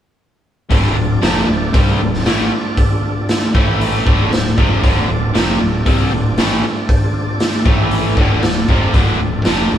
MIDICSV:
0, 0, Header, 1, 5, 480
1, 0, Start_track
1, 0, Key_signature, -1, "minor"
1, 0, Tempo, 514580
1, 659, Time_signature, 4, 2, 24, 8
1, 9123, End_track
2, 0, Start_track
2, 0, Title_t, "Tonewheel organ"
2, 0, Program_c, 0, 16
2, 656, Note_on_c, 0, 62, 54
2, 658, Note_on_c, 0, 65, 57
2, 661, Note_on_c, 0, 69, 57
2, 662, Note_on_c, 0, 74, 55
2, 3280, Note_off_c, 0, 62, 0
2, 3281, Note_off_c, 0, 65, 0
2, 3283, Note_off_c, 0, 69, 0
2, 3283, Note_off_c, 0, 74, 0
2, 3306, Note_on_c, 0, 69, 71
2, 3309, Note_on_c, 0, 76, 69
2, 3311, Note_on_c, 0, 57, 69
2, 3314, Note_on_c, 0, 64, 67
2, 3783, Note_off_c, 0, 69, 0
2, 3784, Note_off_c, 0, 76, 0
2, 3785, Note_off_c, 0, 57, 0
2, 3787, Note_off_c, 0, 64, 0
2, 3795, Note_on_c, 0, 65, 59
2, 3796, Note_on_c, 0, 69, 57
2, 3797, Note_on_c, 0, 62, 58
2, 3798, Note_on_c, 0, 74, 59
2, 7115, Note_off_c, 0, 62, 0
2, 7115, Note_off_c, 0, 65, 0
2, 7115, Note_off_c, 0, 69, 0
2, 7116, Note_off_c, 0, 74, 0
2, 7139, Note_on_c, 0, 76, 64
2, 7140, Note_on_c, 0, 69, 64
2, 7141, Note_on_c, 0, 57, 67
2, 7144, Note_on_c, 0, 64, 62
2, 7608, Note_off_c, 0, 69, 0
2, 7616, Note_off_c, 0, 76, 0
2, 7617, Note_off_c, 0, 57, 0
2, 7618, Note_off_c, 0, 64, 0
2, 7619, Note_on_c, 0, 69, 61
2, 7622, Note_on_c, 0, 62, 59
2, 7623, Note_on_c, 0, 65, 55
2, 7625, Note_on_c, 0, 74, 62
2, 9123, Note_off_c, 0, 62, 0
2, 9123, Note_off_c, 0, 65, 0
2, 9123, Note_off_c, 0, 69, 0
2, 9123, Note_off_c, 0, 74, 0
2, 9123, End_track
3, 0, Start_track
3, 0, Title_t, "Distorted electric guitar"
3, 0, Program_c, 1, 30
3, 648, Note_on_c, 1, 38, 70
3, 658, Note_on_c, 1, 45, 82
3, 663, Note_on_c, 1, 50, 81
3, 881, Note_off_c, 1, 38, 0
3, 882, Note_off_c, 1, 45, 0
3, 892, Note_on_c, 1, 38, 58
3, 894, Note_on_c, 1, 45, 65
3, 895, Note_off_c, 1, 50, 0
3, 1089, Note_off_c, 1, 38, 0
3, 1090, Note_off_c, 1, 45, 0
3, 1134, Note_on_c, 1, 41, 86
3, 1139, Note_on_c, 1, 48, 82
3, 1144, Note_on_c, 1, 53, 85
3, 1371, Note_off_c, 1, 41, 0
3, 1374, Note_off_c, 1, 48, 0
3, 1376, Note_off_c, 1, 53, 0
3, 1379, Note_on_c, 1, 38, 61
3, 1383, Note_on_c, 1, 45, 65
3, 1573, Note_off_c, 1, 38, 0
3, 1575, Note_off_c, 1, 45, 0
3, 1616, Note_on_c, 1, 48, 87
3, 1623, Note_on_c, 1, 55, 85
3, 1631, Note_on_c, 1, 60, 88
3, 1854, Note_off_c, 1, 48, 0
3, 1857, Note_off_c, 1, 55, 0
3, 1861, Note_off_c, 1, 60, 0
3, 1866, Note_on_c, 1, 38, 62
3, 1869, Note_on_c, 1, 45, 67
3, 2058, Note_off_c, 1, 38, 0
3, 2059, Note_off_c, 1, 45, 0
3, 2109, Note_on_c, 1, 45, 78
3, 2112, Note_on_c, 1, 52, 91
3, 2122, Note_on_c, 1, 57, 94
3, 2341, Note_off_c, 1, 45, 0
3, 2342, Note_off_c, 1, 52, 0
3, 2347, Note_off_c, 1, 57, 0
3, 3304, Note_on_c, 1, 45, 87
3, 3311, Note_on_c, 1, 52, 91
3, 3314, Note_on_c, 1, 57, 100
3, 3780, Note_off_c, 1, 45, 0
3, 3783, Note_off_c, 1, 52, 0
3, 3785, Note_off_c, 1, 57, 0
3, 3785, Note_on_c, 1, 38, 89
3, 3791, Note_on_c, 1, 45, 79
3, 3798, Note_on_c, 1, 50, 85
3, 4020, Note_off_c, 1, 38, 0
3, 4023, Note_off_c, 1, 45, 0
3, 4026, Note_off_c, 1, 50, 0
3, 4030, Note_on_c, 1, 38, 52
3, 4037, Note_on_c, 1, 45, 58
3, 4222, Note_off_c, 1, 38, 0
3, 4225, Note_off_c, 1, 45, 0
3, 4266, Note_on_c, 1, 41, 86
3, 4274, Note_on_c, 1, 48, 95
3, 4281, Note_on_c, 1, 53, 92
3, 4496, Note_off_c, 1, 41, 0
3, 4500, Note_on_c, 1, 38, 75
3, 4504, Note_off_c, 1, 48, 0
3, 4507, Note_on_c, 1, 45, 84
3, 4508, Note_off_c, 1, 53, 0
3, 4513, Note_on_c, 1, 50, 91
3, 4737, Note_off_c, 1, 38, 0
3, 4739, Note_off_c, 1, 45, 0
3, 4744, Note_off_c, 1, 50, 0
3, 4747, Note_on_c, 1, 38, 58
3, 4750, Note_on_c, 1, 45, 59
3, 4940, Note_off_c, 1, 38, 0
3, 4942, Note_off_c, 1, 45, 0
3, 4978, Note_on_c, 1, 41, 91
3, 4985, Note_on_c, 1, 48, 86
3, 4992, Note_on_c, 1, 53, 83
3, 5216, Note_off_c, 1, 41, 0
3, 5220, Note_off_c, 1, 48, 0
3, 5223, Note_off_c, 1, 53, 0
3, 5224, Note_on_c, 1, 38, 63
3, 5228, Note_on_c, 1, 45, 63
3, 5418, Note_off_c, 1, 38, 0
3, 5420, Note_off_c, 1, 45, 0
3, 5466, Note_on_c, 1, 48, 93
3, 5468, Note_on_c, 1, 55, 93
3, 5473, Note_on_c, 1, 60, 95
3, 5700, Note_off_c, 1, 48, 0
3, 5701, Note_off_c, 1, 55, 0
3, 5704, Note_off_c, 1, 60, 0
3, 5706, Note_on_c, 1, 38, 63
3, 5708, Note_on_c, 1, 45, 68
3, 5899, Note_off_c, 1, 38, 0
3, 5900, Note_off_c, 1, 45, 0
3, 5952, Note_on_c, 1, 45, 80
3, 5960, Note_on_c, 1, 52, 91
3, 5964, Note_on_c, 1, 57, 91
3, 6183, Note_off_c, 1, 45, 0
3, 6186, Note_off_c, 1, 52, 0
3, 6188, Note_off_c, 1, 57, 0
3, 7135, Note_on_c, 1, 45, 92
3, 7143, Note_on_c, 1, 52, 101
3, 7148, Note_on_c, 1, 57, 93
3, 7611, Note_off_c, 1, 45, 0
3, 7615, Note_off_c, 1, 52, 0
3, 7615, Note_on_c, 1, 38, 78
3, 7618, Note_off_c, 1, 57, 0
3, 7627, Note_on_c, 1, 45, 82
3, 7629, Note_on_c, 1, 50, 87
3, 7851, Note_off_c, 1, 38, 0
3, 7853, Note_off_c, 1, 45, 0
3, 7858, Note_off_c, 1, 50, 0
3, 7862, Note_on_c, 1, 38, 54
3, 7865, Note_on_c, 1, 45, 65
3, 8054, Note_off_c, 1, 38, 0
3, 8055, Note_off_c, 1, 45, 0
3, 8099, Note_on_c, 1, 41, 76
3, 8108, Note_on_c, 1, 48, 95
3, 8113, Note_on_c, 1, 53, 98
3, 8330, Note_off_c, 1, 41, 0
3, 8334, Note_off_c, 1, 48, 0
3, 8334, Note_on_c, 1, 38, 80
3, 8338, Note_on_c, 1, 45, 82
3, 8340, Note_off_c, 1, 53, 0
3, 8345, Note_on_c, 1, 50, 92
3, 8569, Note_off_c, 1, 38, 0
3, 8571, Note_off_c, 1, 45, 0
3, 8575, Note_off_c, 1, 50, 0
3, 8580, Note_on_c, 1, 38, 58
3, 8585, Note_on_c, 1, 45, 61
3, 8771, Note_off_c, 1, 38, 0
3, 8774, Note_off_c, 1, 45, 0
3, 8819, Note_on_c, 1, 41, 75
3, 8824, Note_on_c, 1, 48, 76
3, 8830, Note_on_c, 1, 53, 101
3, 9051, Note_off_c, 1, 41, 0
3, 9053, Note_off_c, 1, 48, 0
3, 9056, Note_off_c, 1, 53, 0
3, 9058, Note_on_c, 1, 38, 69
3, 9064, Note_on_c, 1, 45, 68
3, 9123, Note_off_c, 1, 38, 0
3, 9123, Note_off_c, 1, 45, 0
3, 9123, End_track
4, 0, Start_track
4, 0, Title_t, "Fingered electric bass"
4, 0, Program_c, 2, 33
4, 660, Note_on_c, 2, 26, 88
4, 884, Note_off_c, 2, 26, 0
4, 894, Note_on_c, 2, 26, 73
4, 1121, Note_off_c, 2, 26, 0
4, 1138, Note_on_c, 2, 29, 86
4, 1364, Note_off_c, 2, 29, 0
4, 1382, Note_on_c, 2, 26, 69
4, 1607, Note_off_c, 2, 26, 0
4, 1624, Note_on_c, 2, 36, 78
4, 1848, Note_off_c, 2, 36, 0
4, 1870, Note_on_c, 2, 26, 73
4, 2092, Note_off_c, 2, 26, 0
4, 2111, Note_on_c, 2, 33, 85
4, 2332, Note_off_c, 2, 33, 0
4, 3307, Note_on_c, 2, 33, 89
4, 3755, Note_off_c, 2, 33, 0
4, 3792, Note_on_c, 2, 26, 85
4, 4014, Note_off_c, 2, 26, 0
4, 4036, Note_on_c, 2, 26, 75
4, 4256, Note_off_c, 2, 26, 0
4, 4270, Note_on_c, 2, 29, 88
4, 4493, Note_off_c, 2, 29, 0
4, 4511, Note_on_c, 2, 26, 95
4, 4734, Note_off_c, 2, 26, 0
4, 4752, Note_on_c, 2, 26, 79
4, 4974, Note_off_c, 2, 26, 0
4, 4999, Note_on_c, 2, 29, 100
4, 5218, Note_off_c, 2, 29, 0
4, 5238, Note_on_c, 2, 26, 70
4, 5457, Note_off_c, 2, 26, 0
4, 5472, Note_on_c, 2, 36, 77
4, 5694, Note_off_c, 2, 36, 0
4, 5720, Note_on_c, 2, 26, 72
4, 5937, Note_off_c, 2, 26, 0
4, 5954, Note_on_c, 2, 33, 86
4, 6174, Note_off_c, 2, 33, 0
4, 7141, Note_on_c, 2, 33, 80
4, 7588, Note_off_c, 2, 33, 0
4, 7620, Note_on_c, 2, 26, 84
4, 7844, Note_off_c, 2, 26, 0
4, 7858, Note_on_c, 2, 26, 69
4, 8083, Note_off_c, 2, 26, 0
4, 8105, Note_on_c, 2, 29, 86
4, 8326, Note_off_c, 2, 29, 0
4, 8338, Note_on_c, 2, 26, 87
4, 8562, Note_off_c, 2, 26, 0
4, 8577, Note_on_c, 2, 26, 69
4, 8801, Note_off_c, 2, 26, 0
4, 8818, Note_on_c, 2, 29, 85
4, 9041, Note_off_c, 2, 29, 0
4, 9063, Note_on_c, 2, 26, 74
4, 9123, Note_off_c, 2, 26, 0
4, 9123, End_track
5, 0, Start_track
5, 0, Title_t, "Drums"
5, 659, Note_on_c, 9, 36, 86
5, 664, Note_on_c, 9, 46, 45
5, 752, Note_off_c, 9, 36, 0
5, 757, Note_off_c, 9, 46, 0
5, 1144, Note_on_c, 9, 46, 49
5, 1148, Note_on_c, 9, 38, 107
5, 1237, Note_off_c, 9, 46, 0
5, 1242, Note_off_c, 9, 38, 0
5, 1625, Note_on_c, 9, 36, 108
5, 1627, Note_on_c, 9, 46, 49
5, 1718, Note_off_c, 9, 36, 0
5, 1721, Note_off_c, 9, 46, 0
5, 1993, Note_on_c, 9, 38, 33
5, 2087, Note_off_c, 9, 38, 0
5, 2105, Note_on_c, 9, 46, 48
5, 2110, Note_on_c, 9, 38, 104
5, 2199, Note_off_c, 9, 46, 0
5, 2203, Note_off_c, 9, 38, 0
5, 2587, Note_on_c, 9, 46, 46
5, 2588, Note_on_c, 9, 36, 96
5, 2680, Note_off_c, 9, 46, 0
5, 2681, Note_off_c, 9, 36, 0
5, 3067, Note_on_c, 9, 46, 48
5, 3072, Note_on_c, 9, 38, 102
5, 3160, Note_off_c, 9, 46, 0
5, 3165, Note_off_c, 9, 38, 0
5, 3309, Note_on_c, 9, 36, 97
5, 3403, Note_off_c, 9, 36, 0
5, 3554, Note_on_c, 9, 46, 47
5, 3648, Note_off_c, 9, 46, 0
5, 3792, Note_on_c, 9, 36, 97
5, 3886, Note_off_c, 9, 36, 0
5, 4033, Note_on_c, 9, 46, 45
5, 4038, Note_on_c, 9, 38, 101
5, 4127, Note_off_c, 9, 46, 0
5, 4131, Note_off_c, 9, 38, 0
5, 4271, Note_on_c, 9, 36, 89
5, 4364, Note_off_c, 9, 36, 0
5, 4511, Note_on_c, 9, 36, 91
5, 4512, Note_on_c, 9, 46, 46
5, 4604, Note_off_c, 9, 36, 0
5, 4605, Note_off_c, 9, 46, 0
5, 4990, Note_on_c, 9, 46, 45
5, 4995, Note_on_c, 9, 38, 104
5, 5083, Note_off_c, 9, 46, 0
5, 5088, Note_off_c, 9, 38, 0
5, 5469, Note_on_c, 9, 36, 97
5, 5471, Note_on_c, 9, 46, 50
5, 5562, Note_off_c, 9, 36, 0
5, 5564, Note_off_c, 9, 46, 0
5, 5947, Note_on_c, 9, 46, 54
5, 5952, Note_on_c, 9, 38, 95
5, 6040, Note_off_c, 9, 46, 0
5, 6045, Note_off_c, 9, 38, 0
5, 6427, Note_on_c, 9, 36, 94
5, 6428, Note_on_c, 9, 46, 46
5, 6520, Note_off_c, 9, 36, 0
5, 6521, Note_off_c, 9, 46, 0
5, 6903, Note_on_c, 9, 46, 50
5, 6908, Note_on_c, 9, 38, 98
5, 6997, Note_off_c, 9, 46, 0
5, 7001, Note_off_c, 9, 38, 0
5, 7143, Note_on_c, 9, 36, 102
5, 7236, Note_off_c, 9, 36, 0
5, 7379, Note_on_c, 9, 46, 47
5, 7473, Note_off_c, 9, 46, 0
5, 7621, Note_on_c, 9, 36, 87
5, 7714, Note_off_c, 9, 36, 0
5, 7859, Note_on_c, 9, 46, 47
5, 7864, Note_on_c, 9, 38, 105
5, 7952, Note_off_c, 9, 46, 0
5, 7957, Note_off_c, 9, 38, 0
5, 8101, Note_on_c, 9, 36, 90
5, 8195, Note_off_c, 9, 36, 0
5, 8340, Note_on_c, 9, 36, 95
5, 8342, Note_on_c, 9, 46, 44
5, 8433, Note_off_c, 9, 36, 0
5, 8436, Note_off_c, 9, 46, 0
5, 8812, Note_on_c, 9, 46, 45
5, 8817, Note_on_c, 9, 38, 114
5, 8905, Note_off_c, 9, 46, 0
5, 8910, Note_off_c, 9, 38, 0
5, 9123, End_track
0, 0, End_of_file